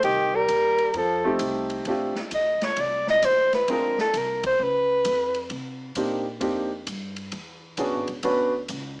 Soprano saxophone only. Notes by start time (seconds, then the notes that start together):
0.04 G4
0.35 A#4
0.98 A4
2.34 D#5
2.64 C#5
2.81 D5
3.10 D#5
3.25 C5
3.55 B4
3.71 A#4
4.01 A4
4.17 A#4
4.46 C5
4.63 B4